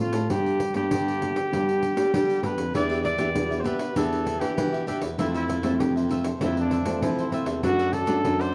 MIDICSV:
0, 0, Header, 1, 6, 480
1, 0, Start_track
1, 0, Tempo, 612245
1, 227, Time_signature, 4, 2, 24, 8
1, 6700, End_track
2, 0, Start_track
2, 0, Title_t, "Cavaquinho"
2, 0, Program_c, 0, 24
2, 2149, Note_on_c, 0, 62, 60
2, 2155, Note_on_c, 0, 67, 64
2, 2158, Note_on_c, 0, 71, 71
2, 2159, Note_on_c, 0, 76, 68
2, 2256, Note_off_c, 0, 62, 0
2, 2260, Note_off_c, 0, 67, 0
2, 2263, Note_off_c, 0, 71, 0
2, 2264, Note_off_c, 0, 76, 0
2, 2265, Note_on_c, 0, 62, 72
2, 2269, Note_on_c, 0, 67, 68
2, 2272, Note_on_c, 0, 71, 78
2, 2273, Note_on_c, 0, 76, 78
2, 2337, Note_off_c, 0, 62, 0
2, 2339, Note_off_c, 0, 67, 0
2, 2341, Note_off_c, 0, 71, 0
2, 2341, Note_off_c, 0, 76, 0
2, 2376, Note_on_c, 0, 62, 43
2, 2381, Note_on_c, 0, 67, 49
2, 2385, Note_on_c, 0, 71, 44
2, 2391, Note_on_c, 0, 76, 50
2, 2481, Note_off_c, 0, 62, 0
2, 2483, Note_off_c, 0, 67, 0
2, 2487, Note_off_c, 0, 71, 0
2, 2487, Note_off_c, 0, 76, 0
2, 2490, Note_on_c, 0, 62, 61
2, 2492, Note_on_c, 0, 67, 64
2, 2496, Note_on_c, 0, 71, 66
2, 2496, Note_on_c, 0, 76, 72
2, 2570, Note_off_c, 0, 62, 0
2, 2571, Note_off_c, 0, 67, 0
2, 2573, Note_off_c, 0, 71, 0
2, 2573, Note_off_c, 0, 76, 0
2, 2746, Note_on_c, 0, 76, 44
2, 2749, Note_on_c, 0, 71, 39
2, 2755, Note_on_c, 0, 67, 35
2, 2849, Note_off_c, 0, 67, 0
2, 2855, Note_off_c, 0, 71, 0
2, 2855, Note_on_c, 0, 62, 69
2, 2857, Note_off_c, 0, 76, 0
2, 2859, Note_on_c, 0, 67, 67
2, 2865, Note_on_c, 0, 71, 67
2, 2866, Note_on_c, 0, 76, 64
2, 2959, Note_off_c, 0, 76, 0
2, 2967, Note_off_c, 0, 71, 0
2, 2969, Note_on_c, 0, 76, 43
2, 2971, Note_off_c, 0, 67, 0
2, 2972, Note_off_c, 0, 62, 0
2, 2976, Note_on_c, 0, 71, 38
2, 2981, Note_on_c, 0, 67, 36
2, 3089, Note_off_c, 0, 76, 0
2, 3092, Note_off_c, 0, 71, 0
2, 3095, Note_off_c, 0, 67, 0
2, 3103, Note_on_c, 0, 62, 68
2, 3106, Note_on_c, 0, 67, 69
2, 3109, Note_on_c, 0, 71, 72
2, 3112, Note_on_c, 0, 76, 71
2, 3323, Note_off_c, 0, 62, 0
2, 3328, Note_off_c, 0, 67, 0
2, 3330, Note_off_c, 0, 71, 0
2, 3332, Note_on_c, 0, 62, 46
2, 3338, Note_off_c, 0, 76, 0
2, 3338, Note_on_c, 0, 67, 46
2, 3339, Note_on_c, 0, 71, 48
2, 3348, Note_on_c, 0, 76, 55
2, 3690, Note_off_c, 0, 62, 0
2, 3693, Note_off_c, 0, 67, 0
2, 3694, Note_off_c, 0, 71, 0
2, 3696, Note_off_c, 0, 76, 0
2, 3705, Note_on_c, 0, 76, 47
2, 3712, Note_on_c, 0, 71, 35
2, 3715, Note_on_c, 0, 67, 34
2, 3812, Note_off_c, 0, 67, 0
2, 3815, Note_off_c, 0, 71, 0
2, 3817, Note_off_c, 0, 76, 0
2, 3818, Note_on_c, 0, 62, 71
2, 3821, Note_on_c, 0, 67, 66
2, 3824, Note_on_c, 0, 71, 72
2, 3826, Note_on_c, 0, 76, 73
2, 3919, Note_off_c, 0, 76, 0
2, 3926, Note_off_c, 0, 71, 0
2, 3928, Note_on_c, 0, 76, 46
2, 3930, Note_off_c, 0, 67, 0
2, 3933, Note_off_c, 0, 62, 0
2, 3935, Note_on_c, 0, 71, 43
2, 3940, Note_on_c, 0, 67, 37
2, 4048, Note_off_c, 0, 76, 0
2, 4052, Note_off_c, 0, 71, 0
2, 4054, Note_off_c, 0, 67, 0
2, 4064, Note_on_c, 0, 65, 64
2, 4067, Note_on_c, 0, 69, 62
2, 4067, Note_on_c, 0, 72, 68
2, 4074, Note_on_c, 0, 76, 72
2, 4176, Note_off_c, 0, 65, 0
2, 4178, Note_off_c, 0, 69, 0
2, 4178, Note_off_c, 0, 72, 0
2, 4181, Note_off_c, 0, 76, 0
2, 4190, Note_on_c, 0, 65, 68
2, 4190, Note_on_c, 0, 69, 75
2, 4197, Note_on_c, 0, 72, 76
2, 4199, Note_on_c, 0, 76, 84
2, 4259, Note_off_c, 0, 65, 0
2, 4260, Note_off_c, 0, 69, 0
2, 4263, Note_off_c, 0, 72, 0
2, 4264, Note_off_c, 0, 76, 0
2, 4291, Note_on_c, 0, 65, 43
2, 4298, Note_on_c, 0, 69, 43
2, 4303, Note_on_c, 0, 72, 49
2, 4305, Note_on_c, 0, 76, 50
2, 4406, Note_off_c, 0, 65, 0
2, 4408, Note_off_c, 0, 69, 0
2, 4409, Note_off_c, 0, 72, 0
2, 4409, Note_off_c, 0, 76, 0
2, 4415, Note_on_c, 0, 65, 67
2, 4417, Note_on_c, 0, 69, 63
2, 4419, Note_on_c, 0, 72, 73
2, 4419, Note_on_c, 0, 76, 75
2, 4492, Note_off_c, 0, 65, 0
2, 4493, Note_off_c, 0, 69, 0
2, 4494, Note_off_c, 0, 72, 0
2, 4494, Note_off_c, 0, 76, 0
2, 4671, Note_on_c, 0, 76, 43
2, 4676, Note_on_c, 0, 72, 40
2, 4682, Note_on_c, 0, 69, 33
2, 4777, Note_off_c, 0, 69, 0
2, 4777, Note_on_c, 0, 65, 62
2, 4778, Note_off_c, 0, 72, 0
2, 4779, Note_off_c, 0, 76, 0
2, 4787, Note_on_c, 0, 69, 72
2, 4788, Note_on_c, 0, 72, 67
2, 4792, Note_on_c, 0, 76, 66
2, 4889, Note_off_c, 0, 76, 0
2, 4893, Note_off_c, 0, 65, 0
2, 4897, Note_off_c, 0, 69, 0
2, 4898, Note_off_c, 0, 72, 0
2, 4899, Note_on_c, 0, 76, 47
2, 4907, Note_on_c, 0, 72, 39
2, 4910, Note_on_c, 0, 69, 37
2, 5013, Note_off_c, 0, 76, 0
2, 5018, Note_off_c, 0, 72, 0
2, 5019, Note_off_c, 0, 69, 0
2, 5028, Note_on_c, 0, 65, 73
2, 5033, Note_on_c, 0, 69, 71
2, 5035, Note_on_c, 0, 72, 74
2, 5038, Note_on_c, 0, 76, 78
2, 5255, Note_off_c, 0, 65, 0
2, 5258, Note_off_c, 0, 69, 0
2, 5259, Note_off_c, 0, 72, 0
2, 5263, Note_off_c, 0, 76, 0
2, 5264, Note_on_c, 0, 65, 43
2, 5267, Note_on_c, 0, 69, 49
2, 5269, Note_on_c, 0, 72, 51
2, 5275, Note_on_c, 0, 76, 52
2, 5616, Note_off_c, 0, 65, 0
2, 5618, Note_off_c, 0, 69, 0
2, 5618, Note_off_c, 0, 72, 0
2, 5621, Note_off_c, 0, 76, 0
2, 5638, Note_on_c, 0, 76, 47
2, 5641, Note_on_c, 0, 72, 43
2, 5648, Note_on_c, 0, 69, 38
2, 5737, Note_off_c, 0, 69, 0
2, 5740, Note_off_c, 0, 72, 0
2, 5741, Note_on_c, 0, 65, 66
2, 5743, Note_off_c, 0, 76, 0
2, 5746, Note_on_c, 0, 69, 67
2, 5749, Note_on_c, 0, 72, 71
2, 5753, Note_on_c, 0, 76, 72
2, 5840, Note_off_c, 0, 76, 0
2, 5847, Note_off_c, 0, 72, 0
2, 5850, Note_on_c, 0, 76, 50
2, 5853, Note_off_c, 0, 69, 0
2, 5854, Note_off_c, 0, 65, 0
2, 5856, Note_on_c, 0, 72, 43
2, 5863, Note_on_c, 0, 69, 36
2, 5969, Note_off_c, 0, 76, 0
2, 5972, Note_off_c, 0, 72, 0
2, 5975, Note_off_c, 0, 69, 0
2, 5983, Note_on_c, 0, 62, 59
2, 5985, Note_on_c, 0, 69, 70
2, 5989, Note_on_c, 0, 74, 70
2, 5994, Note_on_c, 0, 78, 71
2, 6095, Note_off_c, 0, 62, 0
2, 6097, Note_off_c, 0, 69, 0
2, 6098, Note_off_c, 0, 74, 0
2, 6101, Note_off_c, 0, 78, 0
2, 6109, Note_on_c, 0, 62, 75
2, 6112, Note_on_c, 0, 74, 74
2, 6113, Note_on_c, 0, 69, 74
2, 6115, Note_on_c, 0, 78, 80
2, 6178, Note_off_c, 0, 62, 0
2, 6180, Note_off_c, 0, 74, 0
2, 6181, Note_off_c, 0, 69, 0
2, 6181, Note_off_c, 0, 78, 0
2, 6211, Note_on_c, 0, 62, 45
2, 6216, Note_on_c, 0, 69, 43
2, 6218, Note_on_c, 0, 74, 46
2, 6220, Note_on_c, 0, 78, 49
2, 6308, Note_off_c, 0, 62, 0
2, 6316, Note_off_c, 0, 69, 0
2, 6317, Note_off_c, 0, 74, 0
2, 6318, Note_on_c, 0, 62, 68
2, 6320, Note_off_c, 0, 78, 0
2, 6326, Note_on_c, 0, 69, 71
2, 6327, Note_on_c, 0, 74, 74
2, 6329, Note_on_c, 0, 78, 72
2, 6403, Note_off_c, 0, 62, 0
2, 6407, Note_off_c, 0, 69, 0
2, 6407, Note_off_c, 0, 74, 0
2, 6409, Note_off_c, 0, 78, 0
2, 6577, Note_on_c, 0, 78, 45
2, 6581, Note_on_c, 0, 74, 42
2, 6588, Note_on_c, 0, 69, 38
2, 6678, Note_off_c, 0, 69, 0
2, 6683, Note_off_c, 0, 74, 0
2, 6685, Note_off_c, 0, 78, 0
2, 6700, End_track
3, 0, Start_track
3, 0, Title_t, "Trumpet"
3, 0, Program_c, 1, 56
3, 0, Note_on_c, 1, 65, 73
3, 248, Note_on_c, 1, 67, 83
3, 260, Note_off_c, 1, 65, 0
3, 593, Note_off_c, 1, 67, 0
3, 597, Note_on_c, 1, 67, 87
3, 1918, Note_on_c, 1, 71, 86
3, 1930, Note_off_c, 1, 67, 0
3, 2153, Note_off_c, 1, 71, 0
3, 2161, Note_on_c, 1, 74, 94
3, 2378, Note_off_c, 1, 74, 0
3, 2389, Note_on_c, 1, 74, 104
3, 2826, Note_on_c, 1, 72, 63
3, 2838, Note_off_c, 1, 74, 0
3, 2866, Note_on_c, 1, 71, 78
3, 2878, Note_off_c, 1, 72, 0
3, 3112, Note_on_c, 1, 69, 84
3, 3124, Note_off_c, 1, 71, 0
3, 3449, Note_on_c, 1, 67, 89
3, 3461, Note_off_c, 1, 69, 0
3, 3819, Note_off_c, 1, 67, 0
3, 3825, Note_on_c, 1, 67, 73
3, 3934, Note_off_c, 1, 67, 0
3, 4077, Note_on_c, 1, 64, 83
3, 4184, Note_off_c, 1, 64, 0
3, 4196, Note_on_c, 1, 64, 76
3, 4544, Note_on_c, 1, 67, 73
3, 4556, Note_off_c, 1, 64, 0
3, 4666, Note_off_c, 1, 67, 0
3, 5039, Note_on_c, 1, 64, 85
3, 5145, Note_off_c, 1, 64, 0
3, 5170, Note_on_c, 1, 62, 80
3, 5513, Note_on_c, 1, 64, 79
3, 5525, Note_off_c, 1, 62, 0
3, 5870, Note_off_c, 1, 64, 0
3, 5993, Note_on_c, 1, 66, 98
3, 6217, Note_on_c, 1, 69, 99
3, 6229, Note_off_c, 1, 66, 0
3, 6593, Note_on_c, 1, 72, 100
3, 6605, Note_off_c, 1, 69, 0
3, 6700, Note_off_c, 1, 72, 0
3, 6700, End_track
4, 0, Start_track
4, 0, Title_t, "Nylon-string guitar"
4, 0, Program_c, 2, 24
4, 0, Note_on_c, 2, 45, 53
4, 0, Note_on_c, 2, 57, 53
4, 0, Note_on_c, 2, 60, 49
4, 3, Note_on_c, 2, 65, 53
4, 131, Note_off_c, 2, 57, 0
4, 134, Note_off_c, 2, 60, 0
4, 135, Note_off_c, 2, 65, 0
4, 208, Note_off_c, 2, 45, 0
4, 231, Note_on_c, 2, 55, 53
4, 234, Note_on_c, 2, 59, 53
4, 238, Note_on_c, 2, 67, 60
4, 239, Note_on_c, 2, 62, 52
4, 456, Note_off_c, 2, 59, 0
4, 458, Note_off_c, 2, 62, 0
4, 458, Note_off_c, 2, 67, 0
4, 584, Note_on_c, 2, 59, 59
4, 587, Note_on_c, 2, 62, 58
4, 592, Note_on_c, 2, 67, 65
4, 685, Note_off_c, 2, 55, 0
4, 712, Note_on_c, 2, 50, 55
4, 908, Note_off_c, 2, 59, 0
4, 910, Note_off_c, 2, 62, 0
4, 910, Note_off_c, 2, 67, 0
4, 951, Note_on_c, 2, 59, 48
4, 953, Note_on_c, 2, 62, 55
4, 957, Note_on_c, 2, 67, 59
4, 1090, Note_off_c, 2, 62, 0
4, 1091, Note_off_c, 2, 59, 0
4, 1094, Note_off_c, 2, 67, 0
4, 1166, Note_off_c, 2, 50, 0
4, 1183, Note_on_c, 2, 55, 53
4, 1186, Note_on_c, 2, 59, 53
4, 1191, Note_on_c, 2, 62, 55
4, 1197, Note_on_c, 2, 67, 55
4, 1507, Note_off_c, 2, 59, 0
4, 1511, Note_off_c, 2, 62, 0
4, 1513, Note_off_c, 2, 67, 0
4, 1537, Note_on_c, 2, 59, 49
4, 1540, Note_on_c, 2, 62, 49
4, 1544, Note_on_c, 2, 67, 60
4, 1642, Note_off_c, 2, 55, 0
4, 1673, Note_on_c, 2, 50, 49
4, 1864, Note_off_c, 2, 59, 0
4, 1866, Note_off_c, 2, 62, 0
4, 1867, Note_off_c, 2, 67, 0
4, 1898, Note_on_c, 2, 59, 47
4, 1901, Note_on_c, 2, 62, 46
4, 1906, Note_on_c, 2, 67, 53
4, 2044, Note_off_c, 2, 59, 0
4, 2046, Note_off_c, 2, 62, 0
4, 2048, Note_off_c, 2, 67, 0
4, 2126, Note_off_c, 2, 50, 0
4, 2141, Note_on_c, 2, 52, 51
4, 2147, Note_on_c, 2, 59, 56
4, 2149, Note_on_c, 2, 62, 53
4, 2153, Note_on_c, 2, 67, 57
4, 2371, Note_off_c, 2, 59, 0
4, 2374, Note_off_c, 2, 62, 0
4, 2376, Note_off_c, 2, 67, 0
4, 2490, Note_on_c, 2, 59, 62
4, 2492, Note_on_c, 2, 62, 56
4, 2496, Note_on_c, 2, 67, 65
4, 2601, Note_off_c, 2, 52, 0
4, 2616, Note_on_c, 2, 47, 56
4, 2820, Note_off_c, 2, 59, 0
4, 2822, Note_off_c, 2, 62, 0
4, 2823, Note_off_c, 2, 67, 0
4, 2847, Note_on_c, 2, 59, 51
4, 2851, Note_on_c, 2, 62, 47
4, 2857, Note_on_c, 2, 67, 51
4, 3059, Note_off_c, 2, 59, 0
4, 3061, Note_off_c, 2, 62, 0
4, 3064, Note_off_c, 2, 67, 0
4, 3078, Note_off_c, 2, 47, 0
4, 3096, Note_on_c, 2, 52, 50
4, 3100, Note_on_c, 2, 59, 55
4, 3101, Note_on_c, 2, 62, 53
4, 3105, Note_on_c, 2, 67, 55
4, 3328, Note_off_c, 2, 62, 0
4, 3329, Note_off_c, 2, 59, 0
4, 3331, Note_off_c, 2, 67, 0
4, 3454, Note_on_c, 2, 59, 52
4, 3458, Note_on_c, 2, 62, 52
4, 3463, Note_on_c, 2, 67, 50
4, 3558, Note_off_c, 2, 52, 0
4, 3590, Note_on_c, 2, 47, 50
4, 3783, Note_off_c, 2, 59, 0
4, 3784, Note_off_c, 2, 62, 0
4, 3787, Note_off_c, 2, 67, 0
4, 3813, Note_on_c, 2, 59, 54
4, 3818, Note_on_c, 2, 62, 45
4, 3822, Note_on_c, 2, 67, 53
4, 3962, Note_off_c, 2, 59, 0
4, 3964, Note_off_c, 2, 62, 0
4, 3966, Note_off_c, 2, 67, 0
4, 4045, Note_off_c, 2, 47, 0
4, 4058, Note_on_c, 2, 41, 51
4, 4059, Note_on_c, 2, 52, 49
4, 4061, Note_on_c, 2, 57, 54
4, 4066, Note_on_c, 2, 60, 58
4, 4288, Note_off_c, 2, 52, 0
4, 4290, Note_off_c, 2, 57, 0
4, 4292, Note_off_c, 2, 60, 0
4, 4409, Note_on_c, 2, 52, 55
4, 4413, Note_on_c, 2, 57, 60
4, 4418, Note_on_c, 2, 60, 64
4, 4519, Note_off_c, 2, 41, 0
4, 4542, Note_on_c, 2, 48, 55
4, 4740, Note_off_c, 2, 52, 0
4, 4741, Note_off_c, 2, 57, 0
4, 4744, Note_off_c, 2, 60, 0
4, 4783, Note_on_c, 2, 52, 52
4, 4785, Note_on_c, 2, 57, 52
4, 4788, Note_on_c, 2, 60, 52
4, 4926, Note_off_c, 2, 57, 0
4, 4927, Note_off_c, 2, 52, 0
4, 4929, Note_off_c, 2, 60, 0
4, 5001, Note_off_c, 2, 48, 0
4, 5025, Note_on_c, 2, 52, 56
4, 5030, Note_on_c, 2, 41, 55
4, 5033, Note_on_c, 2, 57, 52
4, 5035, Note_on_c, 2, 60, 59
4, 5348, Note_off_c, 2, 52, 0
4, 5352, Note_off_c, 2, 57, 0
4, 5352, Note_off_c, 2, 60, 0
4, 5366, Note_on_c, 2, 52, 51
4, 5370, Note_on_c, 2, 57, 53
4, 5373, Note_on_c, 2, 60, 58
4, 5485, Note_off_c, 2, 41, 0
4, 5499, Note_on_c, 2, 48, 52
4, 5698, Note_off_c, 2, 52, 0
4, 5701, Note_off_c, 2, 57, 0
4, 5701, Note_off_c, 2, 60, 0
4, 5725, Note_on_c, 2, 52, 54
4, 5727, Note_on_c, 2, 57, 46
4, 5733, Note_on_c, 2, 60, 59
4, 5938, Note_off_c, 2, 52, 0
4, 5939, Note_off_c, 2, 57, 0
4, 5940, Note_off_c, 2, 60, 0
4, 5959, Note_off_c, 2, 48, 0
4, 5977, Note_on_c, 2, 42, 55
4, 5978, Note_on_c, 2, 54, 55
4, 5982, Note_on_c, 2, 57, 59
4, 5986, Note_on_c, 2, 62, 62
4, 6207, Note_off_c, 2, 54, 0
4, 6210, Note_off_c, 2, 57, 0
4, 6211, Note_off_c, 2, 62, 0
4, 6325, Note_on_c, 2, 54, 60
4, 6327, Note_on_c, 2, 57, 61
4, 6332, Note_on_c, 2, 62, 66
4, 6438, Note_off_c, 2, 42, 0
4, 6454, Note_on_c, 2, 42, 54
4, 6657, Note_off_c, 2, 54, 0
4, 6657, Note_off_c, 2, 57, 0
4, 6661, Note_off_c, 2, 62, 0
4, 6700, Note_off_c, 2, 42, 0
4, 6700, End_track
5, 0, Start_track
5, 0, Title_t, "Baritone saxophone"
5, 0, Program_c, 3, 67
5, 99, Note_on_c, 3, 45, 73
5, 205, Note_off_c, 3, 45, 0
5, 235, Note_on_c, 3, 43, 86
5, 538, Note_off_c, 3, 43, 0
5, 581, Note_on_c, 3, 43, 76
5, 686, Note_off_c, 3, 43, 0
5, 714, Note_on_c, 3, 43, 88
5, 1119, Note_off_c, 3, 43, 0
5, 1197, Note_on_c, 3, 43, 80
5, 1499, Note_off_c, 3, 43, 0
5, 1540, Note_on_c, 3, 55, 75
5, 1645, Note_off_c, 3, 55, 0
5, 1676, Note_on_c, 3, 55, 88
5, 1876, Note_off_c, 3, 55, 0
5, 1903, Note_on_c, 3, 43, 71
5, 2008, Note_off_c, 3, 43, 0
5, 2012, Note_on_c, 3, 41, 69
5, 2127, Note_off_c, 3, 41, 0
5, 2149, Note_on_c, 3, 40, 89
5, 2455, Note_off_c, 3, 40, 0
5, 2496, Note_on_c, 3, 40, 78
5, 2603, Note_off_c, 3, 40, 0
5, 2628, Note_on_c, 3, 40, 88
5, 2856, Note_off_c, 3, 40, 0
5, 3103, Note_on_c, 3, 40, 81
5, 3411, Note_off_c, 3, 40, 0
5, 3449, Note_on_c, 3, 52, 77
5, 3559, Note_off_c, 3, 52, 0
5, 3582, Note_on_c, 3, 52, 93
5, 3789, Note_off_c, 3, 52, 0
5, 3932, Note_on_c, 3, 40, 75
5, 4041, Note_off_c, 3, 40, 0
5, 4062, Note_on_c, 3, 41, 89
5, 4370, Note_off_c, 3, 41, 0
5, 4407, Note_on_c, 3, 41, 77
5, 4518, Note_off_c, 3, 41, 0
5, 4538, Note_on_c, 3, 41, 87
5, 4950, Note_off_c, 3, 41, 0
5, 5016, Note_on_c, 3, 41, 89
5, 5327, Note_off_c, 3, 41, 0
5, 5366, Note_on_c, 3, 53, 76
5, 5477, Note_off_c, 3, 53, 0
5, 5499, Note_on_c, 3, 53, 96
5, 5707, Note_off_c, 3, 53, 0
5, 5850, Note_on_c, 3, 40, 72
5, 5959, Note_off_c, 3, 40, 0
5, 5983, Note_on_c, 3, 42, 91
5, 6291, Note_off_c, 3, 42, 0
5, 6327, Note_on_c, 3, 42, 83
5, 6437, Note_off_c, 3, 42, 0
5, 6457, Note_on_c, 3, 42, 89
5, 6689, Note_off_c, 3, 42, 0
5, 6700, End_track
6, 0, Start_track
6, 0, Title_t, "Pandeiro"
6, 99, Note_on_c, 9, 54, 62
6, 177, Note_off_c, 9, 54, 0
6, 235, Note_on_c, 9, 54, 70
6, 313, Note_off_c, 9, 54, 0
6, 362, Note_on_c, 9, 54, 28
6, 440, Note_off_c, 9, 54, 0
6, 470, Note_on_c, 9, 54, 54
6, 548, Note_off_c, 9, 54, 0
6, 582, Note_on_c, 9, 54, 56
6, 660, Note_off_c, 9, 54, 0
6, 714, Note_on_c, 9, 54, 74
6, 793, Note_off_c, 9, 54, 0
6, 849, Note_on_c, 9, 54, 33
6, 927, Note_off_c, 9, 54, 0
6, 956, Note_on_c, 9, 54, 54
6, 1034, Note_off_c, 9, 54, 0
6, 1067, Note_on_c, 9, 54, 65
6, 1145, Note_off_c, 9, 54, 0
6, 1202, Note_on_c, 9, 54, 70
6, 1280, Note_off_c, 9, 54, 0
6, 1323, Note_on_c, 9, 54, 30
6, 1401, Note_off_c, 9, 54, 0
6, 1432, Note_on_c, 9, 54, 50
6, 1510, Note_off_c, 9, 54, 0
6, 1545, Note_on_c, 9, 54, 65
6, 1624, Note_off_c, 9, 54, 0
6, 1677, Note_on_c, 9, 54, 75
6, 1755, Note_off_c, 9, 54, 0
6, 1799, Note_on_c, 9, 54, 31
6, 1878, Note_off_c, 9, 54, 0
6, 1907, Note_on_c, 9, 54, 53
6, 1986, Note_off_c, 9, 54, 0
6, 2022, Note_on_c, 9, 54, 58
6, 2100, Note_off_c, 9, 54, 0
6, 2155, Note_on_c, 9, 54, 68
6, 2234, Note_off_c, 9, 54, 0
6, 2286, Note_on_c, 9, 54, 29
6, 2364, Note_off_c, 9, 54, 0
6, 2389, Note_on_c, 9, 54, 59
6, 2467, Note_off_c, 9, 54, 0
6, 2498, Note_on_c, 9, 54, 61
6, 2576, Note_off_c, 9, 54, 0
6, 2630, Note_on_c, 9, 54, 71
6, 2708, Note_off_c, 9, 54, 0
6, 2759, Note_on_c, 9, 54, 33
6, 2837, Note_off_c, 9, 54, 0
6, 2866, Note_on_c, 9, 54, 55
6, 2944, Note_off_c, 9, 54, 0
6, 2974, Note_on_c, 9, 54, 61
6, 3052, Note_off_c, 9, 54, 0
6, 3106, Note_on_c, 9, 54, 72
6, 3184, Note_off_c, 9, 54, 0
6, 3234, Note_on_c, 9, 54, 30
6, 3313, Note_off_c, 9, 54, 0
6, 3344, Note_on_c, 9, 54, 52
6, 3423, Note_off_c, 9, 54, 0
6, 3460, Note_on_c, 9, 54, 62
6, 3538, Note_off_c, 9, 54, 0
6, 3590, Note_on_c, 9, 54, 76
6, 3668, Note_off_c, 9, 54, 0
6, 3718, Note_on_c, 9, 54, 30
6, 3796, Note_off_c, 9, 54, 0
6, 3826, Note_on_c, 9, 54, 51
6, 3905, Note_off_c, 9, 54, 0
6, 3932, Note_on_c, 9, 54, 66
6, 4010, Note_off_c, 9, 54, 0
6, 4067, Note_on_c, 9, 54, 67
6, 4146, Note_off_c, 9, 54, 0
6, 4199, Note_on_c, 9, 54, 29
6, 4277, Note_off_c, 9, 54, 0
6, 4308, Note_on_c, 9, 54, 57
6, 4386, Note_off_c, 9, 54, 0
6, 4416, Note_on_c, 9, 54, 60
6, 4494, Note_off_c, 9, 54, 0
6, 4548, Note_on_c, 9, 54, 75
6, 4627, Note_off_c, 9, 54, 0
6, 4682, Note_on_c, 9, 54, 34
6, 4761, Note_off_c, 9, 54, 0
6, 4787, Note_on_c, 9, 54, 52
6, 4865, Note_off_c, 9, 54, 0
6, 4895, Note_on_c, 9, 54, 64
6, 4973, Note_off_c, 9, 54, 0
6, 5024, Note_on_c, 9, 54, 77
6, 5103, Note_off_c, 9, 54, 0
6, 5151, Note_on_c, 9, 54, 29
6, 5230, Note_off_c, 9, 54, 0
6, 5259, Note_on_c, 9, 54, 52
6, 5338, Note_off_c, 9, 54, 0
6, 5374, Note_on_c, 9, 54, 64
6, 5453, Note_off_c, 9, 54, 0
6, 5507, Note_on_c, 9, 54, 74
6, 5585, Note_off_c, 9, 54, 0
6, 5634, Note_on_c, 9, 54, 31
6, 5712, Note_off_c, 9, 54, 0
6, 5740, Note_on_c, 9, 54, 51
6, 5818, Note_off_c, 9, 54, 0
6, 5850, Note_on_c, 9, 54, 62
6, 5929, Note_off_c, 9, 54, 0
6, 5984, Note_on_c, 9, 54, 70
6, 6063, Note_off_c, 9, 54, 0
6, 6110, Note_on_c, 9, 54, 32
6, 6188, Note_off_c, 9, 54, 0
6, 6217, Note_on_c, 9, 54, 54
6, 6295, Note_off_c, 9, 54, 0
6, 6328, Note_on_c, 9, 54, 61
6, 6406, Note_off_c, 9, 54, 0
6, 6466, Note_on_c, 9, 54, 67
6, 6544, Note_off_c, 9, 54, 0
6, 6591, Note_on_c, 9, 54, 34
6, 6669, Note_off_c, 9, 54, 0
6, 6700, End_track
0, 0, End_of_file